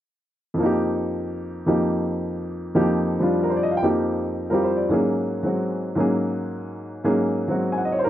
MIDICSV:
0, 0, Header, 1, 2, 480
1, 0, Start_track
1, 0, Tempo, 268697
1, 1065, Time_signature, 4, 2, 24, 8
1, 14463, End_track
2, 0, Start_track
2, 0, Title_t, "Upright piano"
2, 0, Program_c, 0, 0
2, 965, Note_on_c, 0, 41, 41
2, 1025, Note_on_c, 0, 53, 42
2, 1072, Note_on_c, 0, 58, 42
2, 1118, Note_on_c, 0, 63, 41
2, 1174, Note_on_c, 0, 67, 50
2, 2935, Note_off_c, 0, 41, 0
2, 2958, Note_off_c, 0, 53, 0
2, 2966, Note_off_c, 0, 63, 0
2, 2967, Note_off_c, 0, 58, 0
2, 2970, Note_on_c, 0, 41, 45
2, 2971, Note_off_c, 0, 67, 0
2, 2985, Note_on_c, 0, 53, 35
2, 2992, Note_on_c, 0, 63, 36
2, 2994, Note_on_c, 0, 58, 40
2, 2998, Note_on_c, 0, 67, 48
2, 4881, Note_off_c, 0, 41, 0
2, 4886, Note_off_c, 0, 53, 0
2, 4887, Note_off_c, 0, 58, 0
2, 4894, Note_off_c, 0, 63, 0
2, 4903, Note_off_c, 0, 67, 0
2, 4908, Note_on_c, 0, 41, 46
2, 4912, Note_on_c, 0, 53, 44
2, 4914, Note_on_c, 0, 58, 43
2, 4921, Note_on_c, 0, 63, 45
2, 4930, Note_on_c, 0, 67, 57
2, 5673, Note_off_c, 0, 53, 0
2, 5700, Note_on_c, 0, 53, 41
2, 5725, Note_on_c, 0, 55, 36
2, 5744, Note_on_c, 0, 62, 36
2, 5764, Note_on_c, 0, 65, 43
2, 6129, Note_on_c, 0, 70, 43
2, 6245, Note_on_c, 0, 72, 39
2, 6274, Note_off_c, 0, 70, 0
2, 6368, Note_on_c, 0, 74, 45
2, 6403, Note_off_c, 0, 72, 0
2, 6487, Note_on_c, 0, 75, 48
2, 6558, Note_off_c, 0, 74, 0
2, 6633, Note_on_c, 0, 77, 38
2, 6667, Note_off_c, 0, 75, 0
2, 6737, Note_on_c, 0, 79, 55
2, 6767, Note_off_c, 0, 77, 0
2, 6809, Note_off_c, 0, 53, 0
2, 6810, Note_off_c, 0, 41, 0
2, 6814, Note_off_c, 0, 58, 0
2, 6831, Note_off_c, 0, 63, 0
2, 6833, Note_off_c, 0, 67, 0
2, 6835, Note_off_c, 0, 55, 0
2, 6836, Note_on_c, 0, 53, 40
2, 6837, Note_on_c, 0, 41, 41
2, 6840, Note_on_c, 0, 58, 40
2, 6844, Note_off_c, 0, 62, 0
2, 6854, Note_off_c, 0, 65, 0
2, 6858, Note_on_c, 0, 63, 37
2, 6860, Note_on_c, 0, 67, 49
2, 6889, Note_off_c, 0, 79, 0
2, 8039, Note_on_c, 0, 70, 41
2, 8055, Note_on_c, 0, 55, 40
2, 8075, Note_on_c, 0, 60, 39
2, 8085, Note_off_c, 0, 67, 0
2, 8089, Note_on_c, 0, 65, 35
2, 8112, Note_on_c, 0, 67, 44
2, 8279, Note_on_c, 0, 72, 41
2, 8367, Note_off_c, 0, 70, 0
2, 8515, Note_on_c, 0, 74, 38
2, 8630, Note_off_c, 0, 72, 0
2, 8728, Note_on_c, 0, 44, 45
2, 8736, Note_off_c, 0, 55, 0
2, 8746, Note_off_c, 0, 58, 0
2, 8746, Note_off_c, 0, 60, 0
2, 8750, Note_on_c, 0, 54, 40
2, 8751, Note_off_c, 0, 41, 0
2, 8751, Note_off_c, 0, 53, 0
2, 8752, Note_off_c, 0, 65, 0
2, 8762, Note_off_c, 0, 63, 0
2, 8764, Note_off_c, 0, 67, 0
2, 8772, Note_on_c, 0, 58, 41
2, 8793, Note_on_c, 0, 61, 43
2, 8817, Note_on_c, 0, 68, 51
2, 8845, Note_off_c, 0, 74, 0
2, 9673, Note_off_c, 0, 54, 0
2, 9700, Note_on_c, 0, 54, 36
2, 9721, Note_on_c, 0, 56, 31
2, 9738, Note_on_c, 0, 60, 30
2, 9758, Note_on_c, 0, 66, 36
2, 10604, Note_off_c, 0, 44, 0
2, 10620, Note_off_c, 0, 54, 0
2, 10631, Note_on_c, 0, 44, 48
2, 10646, Note_off_c, 0, 58, 0
2, 10647, Note_on_c, 0, 54, 47
2, 10668, Note_off_c, 0, 61, 0
2, 10672, Note_on_c, 0, 58, 47
2, 10673, Note_off_c, 0, 56, 0
2, 10682, Note_off_c, 0, 60, 0
2, 10692, Note_off_c, 0, 66, 0
2, 10695, Note_off_c, 0, 68, 0
2, 10695, Note_on_c, 0, 61, 42
2, 10722, Note_on_c, 0, 68, 54
2, 12551, Note_off_c, 0, 44, 0
2, 12555, Note_off_c, 0, 54, 0
2, 12564, Note_off_c, 0, 58, 0
2, 12566, Note_off_c, 0, 61, 0
2, 12572, Note_off_c, 0, 68, 0
2, 12578, Note_on_c, 0, 44, 50
2, 12582, Note_on_c, 0, 54, 39
2, 12591, Note_on_c, 0, 58, 44
2, 12593, Note_on_c, 0, 61, 44
2, 12599, Note_on_c, 0, 68, 54
2, 13333, Note_off_c, 0, 54, 0
2, 13360, Note_on_c, 0, 54, 39
2, 13380, Note_on_c, 0, 56, 33
2, 13394, Note_on_c, 0, 60, 36
2, 13419, Note_on_c, 0, 66, 44
2, 13795, Note_on_c, 0, 80, 39
2, 13894, Note_on_c, 0, 78, 40
2, 13946, Note_off_c, 0, 80, 0
2, 14022, Note_on_c, 0, 75, 46
2, 14066, Note_off_c, 0, 78, 0
2, 14153, Note_on_c, 0, 73, 47
2, 14225, Note_off_c, 0, 75, 0
2, 14271, Note_on_c, 0, 72, 47
2, 14339, Note_off_c, 0, 73, 0
2, 14367, Note_on_c, 0, 70, 55
2, 14375, Note_off_c, 0, 44, 0
2, 14402, Note_on_c, 0, 44, 50
2, 14419, Note_off_c, 0, 54, 0
2, 14424, Note_off_c, 0, 72, 0
2, 14463, Note_off_c, 0, 44, 0
2, 14463, Note_off_c, 0, 56, 0
2, 14463, Note_off_c, 0, 58, 0
2, 14463, Note_off_c, 0, 60, 0
2, 14463, Note_off_c, 0, 61, 0
2, 14463, Note_off_c, 0, 66, 0
2, 14463, Note_off_c, 0, 68, 0
2, 14463, Note_off_c, 0, 70, 0
2, 14463, End_track
0, 0, End_of_file